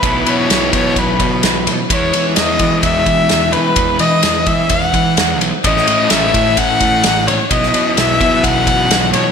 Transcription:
<<
  \new Staff \with { instrumentName = "Erhu" } { \time 4/4 \key e \major \tempo 4 = 128 b'8 cis''4 cis''8 b'4. r8 | cis''4 dis''4 e''4. b'8~ | b'8 dis''4 e''8 fis''4. r8 | dis''4 e''4 fis''4. cis''8 |
dis''4 e''4 fis''4. cis''8 | }
  \new Staff \with { instrumentName = "Distorted electric guitar" } { \clef bass \time 4/4 \key e \major <b, e fis b e'>1 | <e gis b e'>1~ | <e gis b e'>1 | <a, e a cis' e'>1 |
<b, e fis b e'>1 | }
  \new Staff \with { instrumentName = "Overdriven electric guitar" } { \clef bass \time 4/4 \key e \major <b, e fis b e'>1 | <e gis b e'>1~ | <e gis b e'>1 | <a, e a cis' e'>1 |
<b, e fis b e'>1 | }
  \new Staff \with { instrumentName = "Picked electric bass" } { \clef bass \time 4/4 \key e \major b,,8 b,8 b,,8 b,8 b,,8 b,8 b,,8 b,16 r16 | e,8 e8 e,8 e8 e,8 e8 e,8 e16 r16 | e,8 e8 e,8 e8 e,8 e8 e,8 b,,16 r16 | a,,8 a,8 a,,8 a,8 a,,8 a,8 a,,8 ais,,16 r16 |
b,,8 b,8 b,,8 b,8 b,,8 b,8 b,,8 b,16 r16 | }
  \new DrumStaff \with { instrumentName = "Drums" } \drummode { \time 4/4 <bd cymr>8 cymr8 <cymr sn>8 <bd cymr>8 <bd cymr>8 <bd cymr>8 <cymr sn>8 cymr8 | <bd cymr>8 cymr8 <cymr sn>8 <bd cymr>8 <bd cymr>8 <bd cymr>8 <cymr sn>8 cymr8 | <bd cymr>8 cymr8 <cymr sn>8 <bd cymr>8 <bd cymr>8 <bd cymr>8 <cymr sn>8 cymr8 | <bd cymr>16 sn16 cymr8 <cymr sn>8 <bd cymr>8 <bd cymr>8 <bd cymr>8 <cymr sn>8 cymr8 |
<bd cymr>16 sn16 cymr8 <cymr sn>8 <bd cymr>8 <bd cymr>8 <bd cymr>8 <cymr sn>8 cymr8 | }
>>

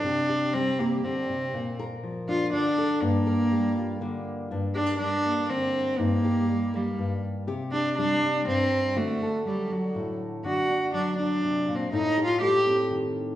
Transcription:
<<
  \new Staff \with { instrumentName = "Cello" } { \time 3/4 \key g \minor \tempo 4 = 121 d'4 c'8 bes8 c'4~ | c'8 r4 f'8 d'4 | bes2~ bes8 r8 | r8 d'8 d'4 c'4 |
bes4. g4 r8 | r8 d'8 d'4 c'4 | a4 g8 fis4 r8 | fis'4 d'8 d'8~ \tuplet 3/2 { d'4 c'8 } |
\tuplet 3/2 { ees'4 f'8 } g'4 r4 | }
  \new Staff \with { instrumentName = "Nylon-string guitar" } { \clef bass \time 3/4 \key g \minor << { r8 g'4 g'4. | r8 bes'4 d'8 r8 a'8 | r8 bes'4 f'8 bes4 | d'8 g'16 bes'8. bes4. |
ees'8 g'4 bes4. | g'8 g'4 d'4. | fis'8 a'4 d'4. | d'8 d'4 d'4. |
ees'8 g'4 c'4. | } \\ { c4 g4 d8 c8 | bes,4 f4 d4 | g,4 g4 d4 | g,4 g4 d4 |
g,4 g4 g,4 | c4 g4 g,4 | d4 fis4 a,4 | d4 fis4 c8 bes,8 |
a,4 a4 ees4 | } >> }
>>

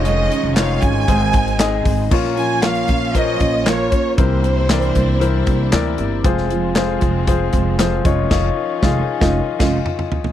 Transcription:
<<
  \new Staff \with { instrumentName = "Violin section" } { \time 4/4 \key bes \minor \tempo 4 = 116 ees''4 f''8 aes''2 r8 | r8 aes''8 f''4 ees''4 des''4 | c''2. r4 | r1 |
r1 | }
  \new Staff \with { instrumentName = "Grand piano" } { \time 4/4 \key bes \minor <ees' f' des''>8. r16 <ees' f' des''>8. r16 <ees' aes' c''>8. r16 <ees' aes' ees''>8. r16 | <f' bes' des''>8. r16 <f' bes' des''>8. r16 <f' bes' c'' des''>8. r16 <f' bes' des''>8. r16 | <e' bes' c''>8. r16 <e' bes' d''>8. r16 <e' bes' c''>8. r16 <e' bes' d''>8. r16 | <f' aes' c''>8. r16 <f' aes' c''>8. r16 <f' aes' c''>8. r16 <f' aes' c''>8 <ees' f' des''>8 |
<ees' f' des''>8 r8 <ees' f' aes'>8 r16 <ees' f'>8 r16 <ees' f'>8 r4 | }
  \new Staff \with { instrumentName = "Grand piano" } { \clef bass \time 4/4 \key bes \minor r2 aes,4. r8 | bes,4. r2 r8 | c4. r2 r8 | r1 |
r1 | }
  \new Staff \with { instrumentName = "Steel-string acoustic guitar" } { \time 4/4 \key bes \minor <f, ees aes des' ees' aes'>8 <aes des' ees' aes'>8 <aes des' ees' aes'>8 <aes des' ees' aes'>8 <aes, ees aes c' ees' aes'>8 <aes c' ees' aes'>8 <aes c' ees' aes'>8 <aes c' ees' aes'>8 | <bes, f bes des' f'>8 <bes des' f'>8 <bes, f bes des' f'>8 <bes des' f'>8 <f bes des' f'>8 <bes des' f'>8 <bes, f bes des' f'>8 <bes des' f'>8 | <c e bes c' g'>8 <bes c' g'>8 <c e bes c' g'>8 <bes c' g'>8 <e bes c' g'>8 <bes c' g'>8 <c e bes c' g'>8 <bes c' g'>8 | <f, c f aes c' f'>8 <f aes c' f'>8 <f, c f aes c' f'>8 <f aes c' f'>8 <f aes c' f'>8 <f aes c' f'>8 <f, c f aes c' f'>8 <aes des' ees' f'>8 |
<f, ees aes des' ees' f'>8 r8 <f, ees aes des' ees' f'>8 r16 <aes des' ees' f'>8 r16 <aes des' ees' f'>8 r4 | }
  \new Staff \with { instrumentName = "String section" } { \clef bass \time 4/4 \key bes \minor << { <f des'>2 <aes c'>2 | <bes des'>1 | <c g d' e'>1 | <aes c'>2.~ <aes c'>8 des'8~ |
des'1 | } \\ { ees1 | f1 | r1 | f2.~ f8 ees8~ |
ees1 | } >> }
  \new Staff \with { instrumentName = "Upright bass" } { \clef bass \time 4/4 \key bes \minor f,,8 r16 f,,8. aes,,8 aes,,4. aes,,8 | bes,,4. bes,,4 bes,,4 r8 | c,4. c,4 c,8 d,8 g,,8 | f,,4. f,,4 f,,4 f,,8 |
f,,8 r8 f,,8 r16 f,,8 r16 f,,8 r4 | }
  \new DrumStaff \with { instrumentName = "Drums" } \drummode { \time 4/4 hh8 hh8 <hc hh sn>8 <hh bd>8 <hh bd>8 <hh bd>16 hh16 <hc hh sn>8 <hho bd>8 | <cymc bd>16 sn16 hh8 <hc hh sn>16 hh16 <hh bd>8 <hh bd>8 <hh bd>8 <hc hh sn>8 <hh bd>8 | <hh bd>8 hh8 <hc hh sn>16 hh16 <hh bd>8 hh8 <hh bd>8 <hc hh sn>8 hh8 | <hh bd>16 sn16 hh8 <hc hh sn>8 <hh bd>8 <hh bd>8 <hh bd>8 <hc hh sn>8 <hh bd>8 |
<cymc bd sn>4 <bd sn>8. <bd sn>16 r8 <cymc bd sn>8 toml16 toml16 tomfh16 tomfh16 | }
>>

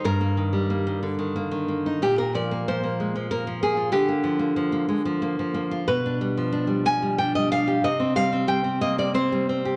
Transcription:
\new Staff \with { instrumentName = "Nylon-string guitar" } { \time 3/4 \key bes \mixolydian \tempo 4 = 92 << { bes'2. | g'16 bes'16 d''8 c''4 bes'8 aes'8 | g'2. | \key c \minor b'4. aes''8 g''16 ees''16 f''8 |
ees''8 f''8 g''8 ees''16 d''16 c''4 | } \\ { g,16 bes16 ees16 g16 bes16 ees16 d16 ees16 bes16 ees16 bes16 ees'16 | bes,16 bes16 f16 bes16 f16 bes16 aes16 f16 bes16 f16 bes16 f'16 | d16 bes16 f16 bes16 f16 bes16 aes16 f16 bes16 f16 bes16 f'16 | b,16 d'16 g16 f16 d'16 g16 f16 g16 d'16 g16 d'16 g'16 |
c16 c'16 g16 c'16 g16 c'16 bes16 g16 c'16 g16 c'16 g'16 | } >> }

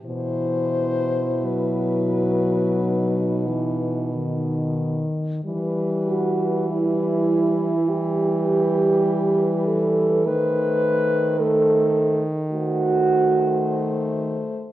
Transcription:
<<
  \new Staff \with { instrumentName = "French horn" } { \time 4/4 \key e \minor \tempo 4 = 50 c''4 b'2 r4 | b'4 b'4 b'2 | bis'4 bis'8. r16 bis'2 | }
  \new Staff \with { instrumentName = "French horn" } { \time 4/4 \key e \minor e'2 dis'4.~ dis'16 r16 | r8 fis'8 e'4 g'4. a'8 | b'4 a'8. r16 fis'4. r8 | }
  \new Staff \with { instrumentName = "French horn" } { \clef bass \time 4/4 \key e \minor e4 fis4. e8 dis4 | g4 g4 g2 | a4 a8. r16 a2 | }
  \new Staff \with { instrumentName = "French horn" } { \clef bass \time 4/4 \key e \minor b,2.~ b,8. r16 | e1 | dis2.~ dis8. r16 | }
>>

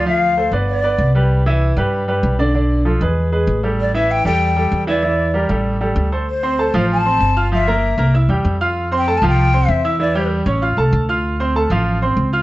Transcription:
<<
  \new Staff \with { instrumentName = "Flute" } { \time 4/4 \key d \dorian \tempo 4 = 193 f''4. r8 d''4. r8 | r1 | r1 | d''8 e''8 g''8 g''2 d''8~ |
d''4. r2 r8 | c''2 a''2 | e''2 r2 | \tuplet 3/2 { r4 g''8~ g''8 a''8 g''8~ } g''4 e''4 |
d''4 r2. | r1 | }
  \new Staff \with { instrumentName = "Grand piano" } { \time 4/4 \key d \dorian <f f' f''>4 <a a' c''>8 <b b' d''>4 <b b' d''>4 <g g' b'>8~ | <g g' b'>8 <e e' e''>4 <g g' b'>4 <g g' b'>4 <d d' d''>8 | <d d' d''>4 <f f' a'>8 <gis gis' b'>4 <gis gis' b'>4 <g g' a'>8~ | <g g' a'>8 <e e' e''>4 <g g' a'>4 <g g' a'>4 <e e' e''>8 |
<e e' e''>4 <g g' bes'>8 <g g' a'>4 <g g' a'>4 <a a' c''>8 | r8 <c' c'' c'''>8 <a a' a''>8 <f f' f''>4 <c' c'' c'''>4 <f' f'' f'''>8 | <f f' f''>8 <bes bes' bes''>4 <bes bes' bes''>8 <e' e'' e'''>8 <g g' g''>4 <f' f'' f'''>8~ | <f' f'' f'''>8 <c' c'' c'''>8 <a a' a''>8 <f f' f''>4 <c' c'' c'''>4 <e' e'' e'''>8 |
<e e' e''>8 <g g' g''>4 <cis' cis'' cis'''>8 <f' f'' f'''>8 <a a' a''>4 <f' f'' f'''>8~ | <f' f'' f'''>8 <c' c'' c'''>8 <a a' a''>8 <f f' f''>4 <c' c'' c'''>4 <f' f'' f'''>8 | }
  \new Staff \with { instrumentName = "Upright bass" } { \clef bass \time 4/4 \key d \dorian d,4. g,,4. c,4~ | c,4. g,4. b,,4~ | b,,4. e,4. a,,4~ | a,,4. e,4. e,4~ |
e,4. a,,4. d,4~ | d,4. a,,4. g,,4~ | g,,4. c,4 e,8 f,4~ | f,4. c,4. e,4~ |
e,4. a,,4 c,8 d,4~ | d,4. a,,4. cis,4 | }
>>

